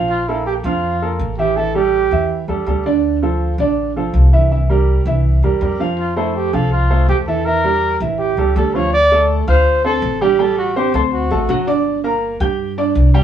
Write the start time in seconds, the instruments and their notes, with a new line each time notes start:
Already playing: upright bass A#1, upright piano F3 F4 F5
0.09 trumpet F4
0.28 upright piano A#3 A4 A#4, trumpet E4
0.46 trumpet G4
0.64 upright bass F2, upright piano F3 F4 F5, trumpet F4
1.02 upright piano A#3 A4 A#4
1.19 upright bass A1
1.38 upright piano E3 E4 E5, trumpet G4
1.56 upright piano E3 E4 E5, trumpet A4
1.75 upright piano G3 G4 A4, trumpet G4
2.11 upright bass E2, upright piano E3 E4 E5
2.48 upright bass E2, upright piano G3 G4 A4
2.66 upright bass D2, upright piano G3 G4 A4
2.86 upright piano D3 D4 D5
3.22 upright piano F3 F4 A4
3.58 upright bass A1, upright piano D3 D4 D5
3.96 upright piano F3 F4 A4
4.14 upright bass C2
4.33 upright piano E3 E4 E5
4.51 upright piano E3 E4 E5
4.70 upright piano G3 G4 A#4
5.06 upright bass C2, upright piano E3 E4 E5
5.43 upright bass E2, upright piano G3 G4 A#4
5.61 upright bass F2, upright piano G3 G4 A#4
5.80 upright piano F3 F4 F5
5.98 trumpet F4
6.16 upright piano A3 A4 C5, trumpet E4
6.35 trumpet G4
6.53 upright bass C2, upright piano F3 F4 F5, trumpet A4
6.72 trumpet F4
6.90 upright piano A3 A4 C5
7.09 upright bass E2, trumpet G4
7.26 upright piano E3 E4 E5, trumpet A4
7.45 upright piano E3 E4 E5, trumpet A#4
7.64 upright piano G3 G4 A#4
8.00 upright bass A1, upright piano E3 E4 E5
8.19 trumpet G4
8.37 upright bass C#2, upright piano G3 G4 A4
8.56 upright bass D2, upright piano G3 G4 A4, trumpet A4
8.74 upright piano F3 F4 F5, trumpet C#5
8.93 trumpet D5
9.12 upright piano A3 A4 A5
9.47 upright bass D2, upright piano F4 F5 F6, trumpet C5
9.85 upright piano C4 C5 C6, trumpet A4
10.02 upright bass A1
10.21 upright piano G3 G4 G5, trumpet G4
10.39 upright piano G3 G4 G5, trumpet A4
10.58 trumpet F#4
10.76 upright piano C4 C5 C6, trumpet G4
10.94 upright bass D2, upright piano C4 C5 C6, trumpet A4
11.13 trumpet F#4
11.31 upright bass A1, upright piano A3 A4 A5
11.49 upright bass G1, upright piano F#3 F#4 F#5
11.67 upright piano D4 D5 D6
12.04 upright piano A#3 A#4 A#5
12.40 upright bass G2, upright piano G4 G5 G6
12.78 upright piano D4 D5 D6
12.95 upright bass C2
13.14 upright piano G3 G4 G5